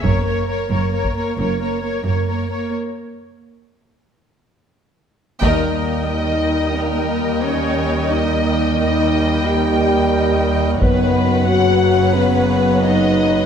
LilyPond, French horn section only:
\new Staff \with { instrumentName = "French horn section" } { \time 12/8 \key dis \phrygian \tempo 4. = 89 r1. | r1. | ais4. dis'4. ais4. cis'4. | dis'4. dis'4. g'2~ g'8 r8 |
b4. fis'4. b4. dis'4. | }